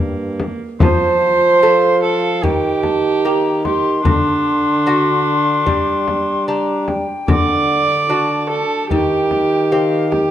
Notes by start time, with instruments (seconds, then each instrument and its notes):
Already playing: bassoon G2, lute G2, viola A#3
0.40 frame drum
0.80 bassoon F3, lute F3, viola C5, recorder A5, frame drum
1.61 lute A3 A4, recorder F5
2.03 viola A4
2.43 bassoon D#3, lute D#3, viola G4, recorder G5, frame drum
2.83 recorder A5, frame drum
3.25 lute A#3 G4, recorder A#5
3.65 viola G4, recorder C6, frame drum
4.04 bassoon D3, lute D3, viola D4, frame drum
4.86 lute D4 F#4
5.66 lute G3, bassoon G3, frame drum
6.08 frame drum
6.48 lute D4 G4, recorder A#5
6.88 recorder G5, frame drum
7.28 bassoon D3, lute D3, viola D5, recorder F#5, frame drum
8.09 lute D4 F#4, recorder A5
8.50 viola A4
8.90 bassoon D#3, lute D#3, viola G4, recorder G5, frame drum
9.31 frame drum
9.72 lute C4 G4, recorder F5
10.11 viola G4, recorder G5, frame drum